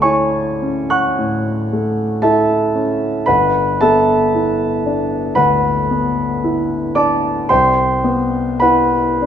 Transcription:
Already playing: D2 A3 D5 A5 D6
0.02 E4 C#5 G#5 C#6
0.62 C#4
0.90 F#5 C#6 F#6
1.18 A2
1.73 A3
2.22 E4 A4 E5 A5
2.75 C#4
3.26 G1 B4 F#5 B5
3.81 B3 A4 E5 A5
4.35 E4
4.86 D4
5.35 D2 B4 F#5 B5
5.91 B3
6.44 E4
6.95 D4 D5 A5 D6
7.49 C2 C5 G5 C6
8.04 B3
8.60 E4 B4 F#5 B5
9.22 D4

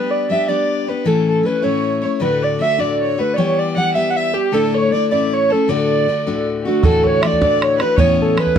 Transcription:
Already playing: G3 B3 D4 G4 B4
0.11 D5
0.30 G3 B3 D4 G4 E5
0.48 G3 B3 D4 G4 D5
0.87 B3 D4 G4 B4
1.05 A2 E3 A3 C#4 E4 A4
1.29 A4
1.43 E3 A3 C#4 B4
1.48 E4
1.62 A2 E3 A3 C#4 E4 C#5
2.02 A3 C#4 E4 C#5
2.20 D2 A2 D3 A3 D4 F#4 B4
2.43 D5
2.59 D3 A3 D4 F#4 E5
2.78 D2 A2 D3 A3 D4 F#4 D5
3.01 C#5
3.18 D3 A3 D4 F#4 B4
3.34 E3 C#5 D5
3.38 G3 B3 G4 C#5
3.59 D5
3.76 E3 G3 B3 G4 F#5
3.94 E3 G3 B3 G4 E5
4.10 F#5
4.15 E5
4.33 G3 B3 G4
4.52 A2 D3 A3 D4 E4 A4
4.74 C#5
4.92 D3 A3 D4 E4 D5
5.11 A2 E3 A3 C#4 E4 D5
5.33 C#5
5.50 A3 C#4 E4 A4
5.68 D2 A2 D3 A3 D4 F#4 D5
6.08 D3 A3 D4 F#4
6.26 D2 A2 D3 A3 D4 F#4
6.61 F#4 G4
6.65 D3 A3 D4 F#4
6.83 D2 A2 E3 A3 D4 F#4 A4, bodhran
7.03 C#5, bodhran
7.22 E3 A3 D4 D5 E5, bodhran
7.26 F#4 D5
7.33 bodhran
7.40 D2 A2 E3 A3 D4 F#4 D5, bodhran
7.61 C#5, bodhran
7.78 D4 F#4 B4, bodhran
7.82 E3 A3
7.96 A2 E3 B3 C#4 E4 C#5, bodhran
8.20 A4, bodhran
8.37 E3 B3 C#4 E4 B4, bodhran
8.47 bodhran
8.56 E4

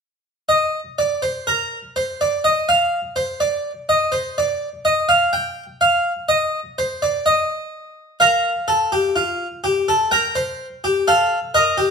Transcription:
0.49 D#5
0.98 D5
1.22 C5
1.47 A#4
1.96 C5
2.21 D5
2.44 D#5
2.69 F5
3.16 C5
3.40 D5
3.89 D#5
4.12 C5
4.38 D5
4.85 D#5
5.09 F5
5.33 G5
5.81 F5
6.29 D#5
6.78 C5
7.02 D5
7.26 D#5
8.20 A#4 F5
8.68 A4
8.92 G4
9.16 F4
9.64 G4
9.88 A4
10.11 A#4 G5
10.35 C5
10.84 G4
11.08 A4 F5
11.54 A#4 D#5
11.78 G4

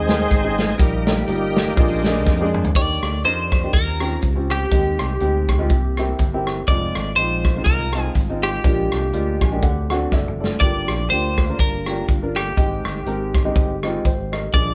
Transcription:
Already playing: D#2 D#3 G#3 C4 D#4 G#4 C5
0.09 G#3 C4 D#4 A#4, snare, closed hi-hat
0.31 G#1, kick, closed hi-hat
0.44 G#3 C4 D#4 G#4
0.58 G#4, snare, closed hi-hat
0.78 A#1 A#2 G3 A#3 D#4 G4, kick, closed hi-hat
1.07 G3 A#3 D#4 A#4, snare, closed hi-hat
1.28 G1 G3 A#3 D#4 F4 G4, closed hi-hat
1.56 snare, closed hi-hat
1.76 A#1 A#2 G#3 A#3 C4 D4 F4, kick, closed hi-hat
2.04 G#3 A#3 D4 G#4, snare, closed hi-hat
2.26 F2, kick, snare
2.41 G#3 A#3 D4 G#4
2.54 mid tom
2.65 floor tom
2.74 D#2 D#3 A#3 D4 D#4 G4 D5, kick, closed hi-hat
3.02 D2, cross-stick, closed hi-hat
3.24 F2 A#3 D4 D#4 A#4 C5, closed hi-hat
3.52 kick, cross-stick, closed hi-hat
3.63 A#3 D4 D#4 G4
3.73 D#2 D#3 C4 C#4 F4 A#4, kick, closed hi-hat
4.00 C4 C#4 F4 G4, cross-stick, closed hi-hat
4.22 C#2, kick, closed hi-hat
4.35 C4 C#4 F4 G4
4.50 G4, cross-stick, closed hi-hat
4.70 D#2 D#3 G#3 C4 D#4 G4, kick, closed hi-hat
4.99 C2, cross-stick, closed hi-hat
5.20 D2 G#3 C4 D#4 G4, closed hi-hat
5.48 kick, cross-stick, closed hi-hat
5.59 G#3 C4 D#4 F4
5.70 C2 C3 A#3 C4 E4, kick, closed hi-hat
5.97 A#3 C4 E4 G4, cross-stick, closed hi-hat
6.19 G1, kick, closed hi-hat
6.33 A#3 C4 E4 G4
6.47 cross-stick, closed hi-hat
6.67 F1 G#3 C4 D#4 F4 D5, kick, closed hi-hat
6.95 G#1, cross-stick, closed hi-hat
7.16 A#1 G#3 C4 D#4 F4 C5, closed hi-hat
7.44 kick, cross-stick, closed hi-hat
7.57 G#3 C4 D#4 F4
7.64 C2 A#4, kick, closed hi-hat
7.93 G#3 C4 D#4 F4, cross-stick, closed hi-hat
8.15 G#1, kick, closed hi-hat
8.30 G#3 C4 D#4 F4
8.43 G4, cross-stick, closed hi-hat
8.64 A#1 A#2 G#3 A#3 D4 F4, kick, closed hi-hat
8.92 C2, cross-stick, closed hi-hat
9.13 D2 G#3 A#3 D4 F4, closed hi-hat
9.41 A#1 G#5, kick, cross-stick, closed hi-hat
9.52 G#3 A#3 D4 G4
9.61 D2 D3 A3 C4 D4 F#4 F#5, kick, closed hi-hat
9.90 A3 C4 D4 F#4 F#5, cross-stick, closed hi-hat
10.12 F#1 A4 D5 E5, kick, snare
10.28 mid tom
10.40 E4 A4 D5, snare
10.60 G1 G2 G3 A#3 D4 F4 G4 D5, kick, closed hi-hat
10.88 A#1, cross-stick, closed hi-hat
11.10 D2 A#3 D4 F4 G4 C5, closed hi-hat
11.37 kick, cross-stick, closed hi-hat
11.49 A#3 D4 F4 A#4
11.59 G1 A#4, kick, closed hi-hat
11.86 A#3 D4 F4 G4, cross-stick, closed hi-hat
12.08 G1, kick, closed hi-hat
12.22 A#3 D4 F4 A#4
12.36 G4, cross-stick, closed hi-hat
12.57 G#1 G#2 G#3 C4 D#4 G4, kick, closed hi-hat
12.85 G1, cross-stick, closed hi-hat
13.06 G#1 G#3 C4 D#4 A#4, closed hi-hat
13.34 kick, cross-stick, closed hi-hat
13.45 G#3 C4 D#4 G4
13.55 G1, kick, closed hi-hat
13.83 G#3 C4 D#4 F4, cross-stick, closed hi-hat
14.05 G#1 G4 C5, kick, closed hi-hat
14.32 A#4 D#5, cross-stick, closed hi-hat
14.53 A#1 A#2 G#3 A#3 D4 F4 G#4 D5, kick, closed hi-hat

